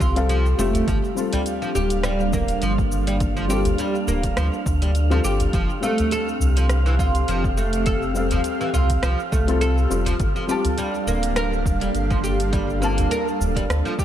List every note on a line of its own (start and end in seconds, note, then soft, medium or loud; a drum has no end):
0.00 0.54 C2 loud
0.00 0.12 G3 medium
0.00 0.13 C4 medium
0.00 2.29 C4 medium
0.00 0.16 F4 medium
0.00 1.69 G4 medium
0.00 0.14 A4 medium
0.00 5.55 A4 medium
0.00 0.14 F5 medium
0.00 0.88 F5 medium
0.00 14.05 F5 medium
0.00 kick loud
0.00 shaker medium
0.16 0.55 G3 loud
0.16 0.55 C4 medium
0.16 0.56 A4 loud
0.16 0.56 F5 medium
0.16 closed hi-hat medium
0.16 shaker soft
0.29 0.45 F3 medium
0.29 closed hi-hat soft
0.29 shaker soft
0.46 shaker soft
0.58 0.82 F1 medium
0.58 1.14 G3 medium
0.58 0.87 A3 medium
0.58 1.14 C4 medium
0.58 1.14 F4 medium
0.58 1.15 G4 loud
0.58 shaker medium
0.74 closed hi-hat medium
0.74 udu medium
0.74 shaker soft
0.88 1.00 G1 loud
0.88 0.97 F3 medium
0.88 5.54 G3 medium
0.88 kick loud
0.88 closed hi-hat soft
0.88 shaker soft
1.04 5.53 F5 medium
1.04 shaker soft
1.15 3.46 G3 medium
1.15 3.47 C4 medium
1.15 7.41 D4 medium
1.15 3.47 F4 medium
1.15 shaker medium
1.19 3.48 A4 medium
1.33 1.40 G3 medium
1.33 closed hi-hat medium
1.33 udu loud
1.33 shaker soft
1.46 closed hi-hat soft
1.46 shaker medium
1.62 1.69 F3 medium
1.62 shaker soft
1.75 2.58 D1 medium
1.75 1.90 G4 medium
1.75 udu medium
1.75 shaker medium
1.79 5.54 A#3 medium
1.90 closed hi-hat medium
1.90 shaker soft
2.03 2.19 G3 medium
2.03 cross-stick medium
2.03 closed hi-hat soft
2.03 shaker medium
2.20 shaker soft
2.33 2.61 A#3 medium
2.33 kick loud
2.33 udu loud
2.33 shaker medium
2.48 closed hi-hat medium
2.48 shaker soft
2.62 3.75 G1 medium
2.62 2.72 F3 medium
2.62 closed hi-hat soft
2.62 shaker soft
2.78 kick loud
2.78 shaker soft
2.92 shaker medium
3.07 3.15 G3 medium
3.07 closed hi-hat medium
3.07 shaker soft
3.20 kick loud
3.20 closed hi-hat soft
3.20 shaker soft
3.37 3.44 F3 medium
3.37 shaker soft
3.48 4.78 G3 medium
3.48 4.79 C4 medium
3.48 4.79 F4 medium
3.48 3.65 G4 medium
3.48 shaker medium
3.52 4.80 A4 medium
3.65 closed hi-hat medium
3.65 udu medium
3.65 shaker soft
3.78 3.94 G3 medium
3.78 closed hi-hat soft
3.78 shaker soft
3.95 shaker soft
4.07 4.32 D1 medium
4.07 4.36 A#3 medium
4.07 udu medium
4.07 shaker medium
4.23 kick medium
4.23 closed hi-hat medium
4.23 shaker soft
4.37 4.50 D2 loud
4.37 4.46 F3 medium
4.37 cross-stick medium
4.37 closed hi-hat soft
4.37 shaker soft
4.54 shaker soft
4.66 5.20 D2 medium
4.66 kick loud
4.66 shaker medium
4.82 4.90 G3 medium
4.82 closed hi-hat medium
4.82 shaker soft
4.95 closed hi-hat soft
4.95 shaker soft
5.10 5.19 F3 medium
5.10 5.52 G3 medium
5.10 5.52 C4 medium
5.10 5.52 F4 medium
5.10 5.53 A4 loud
5.10 shaker soft
5.24 5.48 G1 medium
5.24 5.40 G4 medium
5.24 shaker medium
5.40 closed hi-hat medium
5.40 udu medium
5.40 shaker soft
5.53 5.67 F1 loud
5.53 5.69 F3 medium
5.53 kick loud
5.53 closed hi-hat soft
5.53 shaker soft
5.70 shaker soft
5.81 8.12 G3 medium
5.81 6.11 A3 medium
5.81 8.12 C4 medium
5.81 8.13 F5 medium
5.81 shaker medium
5.85 11.59 C4 medium
5.85 8.14 A4 medium
5.98 closed hi-hat medium
5.98 udu loud
5.98 shaker soft
6.11 6.27 A4 loud
6.11 closed hi-hat soft
6.11 shaker soft
6.23 11.61 G4 medium
6.28 14.05 A4 medium
6.28 10.20 F5 medium
6.28 shaker soft
6.40 7.24 C2 medium
6.40 udu medium
6.40 shaker medium
6.57 6.65 F3 medium
6.57 closed hi-hat medium
6.57 shaker soft
6.69 cross-stick medium
6.69 closed hi-hat soft
6.69 shaker soft
6.86 6.94 E3 medium
6.86 shaker soft
6.99 7.15 F4 medium
6.99 kick loud
6.99 udu loud
6.99 shaker medium
7.15 closed hi-hat medium
7.15 shaker soft
7.28 8.41 F1 medium
7.28 7.44 F3 medium
7.28 closed hi-hat soft
7.28 shaker soft
7.44 kick loud
7.44 shaker soft
7.58 7.85 A3 medium
7.58 shaker medium
7.73 closed hi-hat medium
7.73 shaker soft
7.86 8.02 A4 loud
7.86 kick loud
7.86 closed hi-hat soft
7.86 shaker soft
8.02 shaker soft
8.14 9.44 G3 medium
8.14 9.45 C4 medium
8.14 9.46 F5 medium
8.14 shaker medium
8.18 9.46 A4 medium
8.31 8.39 F3 medium
8.31 closed hi-hat medium
8.31 udu medium
8.31 shaker soft
8.44 closed hi-hat soft
8.44 shaker soft
8.61 8.68 E3 medium
8.61 shaker soft
8.73 8.98 C2 medium
8.73 8.89 F4 medium
8.73 udu medium
8.73 shaker medium
8.90 kick medium
8.90 closed hi-hat medium
8.90 shaker soft
9.03 9.16 C2 loud
9.03 9.18 F3 medium
9.03 cross-stick medium
9.03 closed hi-hat soft
9.03 shaker soft
9.20 shaker soft
9.32 9.87 C2 loud
9.32 9.60 A3 medium
9.32 kick loud
9.32 shaker medium
9.47 9.87 G3 loud
9.47 9.87 C4 medium
9.47 9.88 F4 medium
9.47 9.88 A4 loud
9.47 closed hi-hat medium
9.47 shaker soft
9.61 9.77 A4 loud
9.61 closed hi-hat soft
9.61 shaker soft
9.78 shaker soft
9.90 10.15 F1 medium
9.90 10.45 G3 medium
9.90 10.46 C4 medium
9.90 10.46 F4 medium
9.90 10.46 G4 loud
9.90 shaker medium
10.06 10.14 F3 medium
10.06 closed hi-hat medium
10.06 udu medium
10.06 shaker soft
10.20 10.33 G1 loud
10.20 14.05 G3 medium
10.20 kick loud
10.20 closed hi-hat soft
10.20 shaker soft
10.36 10.43 F3 medium
10.36 shaker soft
10.46 12.78 G3 medium
10.46 12.79 C4 medium
10.46 14.05 D4 medium
10.46 10.64 G4 medium
10.46 14.05 F5 medium
10.46 shaker medium
10.50 12.79 F4 medium
10.50 12.80 A5 medium
10.65 closed hi-hat medium
10.65 udu loud
10.65 shaker soft
10.78 10.93 G3 medium
10.78 closed hi-hat soft
10.78 shaker soft
10.95 shaker soft
11.06 11.90 D1 medium
11.06 14.05 A#3 medium
11.06 11.35 A#3 medium
11.06 udu medium
11.06 shaker medium
11.23 closed hi-hat medium
11.23 shaker soft
11.36 11.52 A#4 loud
11.36 cross-stick medium
11.36 closed hi-hat soft
11.36 shaker soft
11.53 shaker soft
11.66 kick loud
11.66 udu medium
11.66 shaker medium
11.81 11.89 G3 medium
11.81 closed hi-hat medium
11.81 shaker soft
11.95 13.07 G1 medium
11.95 closed hi-hat soft
11.95 shaker soft
12.10 12.18 F3 medium
12.10 kick loud
12.10 shaker soft
12.24 12.39 G4 medium
12.24 shaker medium
12.40 closed hi-hat medium
12.40 shaker soft
12.53 12.68 G3 medium
12.53 kick loud
12.53 closed hi-hat soft
12.53 shaker soft
12.70 shaker soft
12.80 14.05 G3 medium
12.80 13.10 A#3 medium
12.80 14.05 C4 medium
12.80 14.05 F4 medium
12.80 shaker medium
12.84 14.05 A5 medium
12.98 closed hi-hat medium
12.98 udu medium
12.98 shaker soft
13.11 13.26 A#4 loud
13.11 closed hi-hat soft
13.11 shaker soft
13.28 shaker soft
13.40 13.64 D1 medium
13.40 udu medium
13.40 shaker medium
13.56 13.64 G3 medium
13.56 kick medium
13.56 closed hi-hat medium
13.56 shaker soft
13.70 13.82 D2 loud
13.70 cross-stick medium
13.70 closed hi-hat soft
13.70 shaker soft
13.85 13.93 F3 medium
13.85 shaker soft
13.99 14.05 G4 medium
13.99 kick loud
13.99 shaker medium